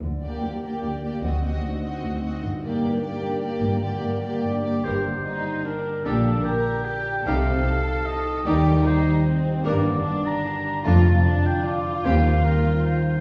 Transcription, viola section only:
\new Staff \with { instrumentName = "Viola section" } { \time 3/4 \key g \minor \tempo 4 = 150 r8 bes4 bes4 bes8 | c'8 c'4 c'4 c'8 | r8 bes4 bes4 bes8~ | bes8 bes4 bes4 bes8 |
<g g'>8 r2 r8 | <g d'>8 r2 r8 | <g ees'>8 r2 r8 | <g ees'>8 r2 r8 |
<g d'>8 r2 r8 | <a d'>8 r2 r8 | <g c'>8 r2 r8 | }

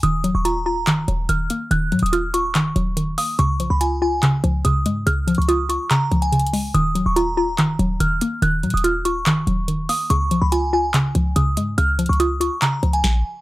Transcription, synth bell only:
\new Staff \with { instrumentName = "Synth bell" } { \time 4/4 \key ees \minor \tempo 4 = 143 ees'''8. des'''16 bes''8 bes''4. f'''4 | ges'''8. ees'''16 f'''8 des'''2 ees'''8 | des'''8. ces'''16 aes''8 aes''4. ees'''4 | f'''8. des'''16 ees'''8 des'''8 bes''8. aes''4~ aes''16 |
ees'''8. des'''16 bes''8 bes''4. f'''4 | ges'''8. ees'''16 f'''8 des'''2 ees'''8 | des'''8. ces'''16 aes''8 aes''4. ees'''4 | f'''8. des'''16 ees'''8 des'''8 bes''8. aes''4~ aes''16 | }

